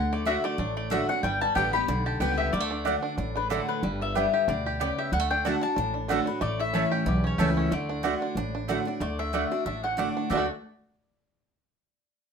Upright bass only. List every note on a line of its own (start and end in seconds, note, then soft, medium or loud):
0.00 0.36 D2 loud
0.58 1.01 A1 loud
1.23 1.44 G1 medium
1.56 1.83 A1 medium
1.88 2.16 B1 medium
2.20 2.48 C#2 medium
2.53 2.95 D2 loud
3.18 3.60 A1 medium
3.83 4.25 G1 loud
4.48 4.90 D2 loud
5.12 5.54 D2 medium
5.77 6.19 A1 medium
6.41 6.84 A1 medium
7.06 7.34 B1 loud
7.38 7.66 C#2 medium
7.71 8.14 D2 medium
8.35 8.78 A1 medium
9.01 9.43 D2 loud
9.66 10.08 A1 medium
10.31 10.47 D2 loud